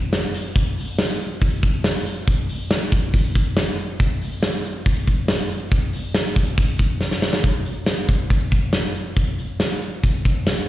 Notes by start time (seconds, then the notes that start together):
0.13 snare, hi-hat pedal, open hi-hat
0.34 hi-hat pedal, open hi-hat
0.56 kick, hi-hat pedal, open hi-hat
0.77 hi-hat pedal, open hi-hat
0.99 snare, hi-hat pedal, open hi-hat
1.20 hi-hat pedal, open hi-hat
1.42 kick, hi-hat pedal, open hi-hat
1.63 kick, hi-hat pedal, open hi-hat
1.84 snare, hi-hat pedal, open hi-hat
2.06 hi-hat pedal, open hi-hat
2.28 kick, hi-hat pedal, open hi-hat
2.49 hi-hat pedal, open hi-hat
2.71 snare, hi-hat pedal, open hi-hat
2.92 kick, hi-hat pedal, open hi-hat
3.14 kick, hi-hat pedal, open hi-hat
3.35 kick, hi-hat pedal, open hi-hat
3.57 snare, hi-hat pedal, open hi-hat
3.78 hi-hat pedal, open hi-hat
4.00 kick, hi-hat pedal, open hi-hat
4.22 hi-hat pedal, open hi-hat
4.43 snare, hi-hat pedal, open hi-hat
4.64 hi-hat pedal, open hi-hat
4.86 kick, hi-hat pedal, open hi-hat
5.07 kick, hi-hat pedal, open hi-hat
5.28 snare, hi-hat pedal, open hi-hat
5.50 hi-hat pedal, open hi-hat
5.72 kick, hi-hat pedal, open hi-hat
5.93 hi-hat pedal, open hi-hat
6.14 snare, hi-hat pedal, open hi-hat
6.36 kick, hi-hat pedal, open hi-hat
6.57 kick, hi-hat pedal, open hi-hat
6.79 kick, hi-hat pedal, open hi-hat
7.01 snare
7.11 snare
7.22 snare
7.33 snare
7.44 kick, closed hi-hat
7.65 closed hi-hat
7.86 snare, closed hi-hat
8.08 kick, closed hi-hat
8.30 kick, closed hi-hat
8.51 kick, closed hi-hat
8.73 snare, closed hi-hat
8.95 closed hi-hat
9.16 kick, closed hi-hat
9.38 closed hi-hat
9.60 snare, closed hi-hat
9.81 closed hi-hat
10.04 kick, closed hi-hat
10.25 kick, closed hi-hat
10.47 snare, closed hi-hat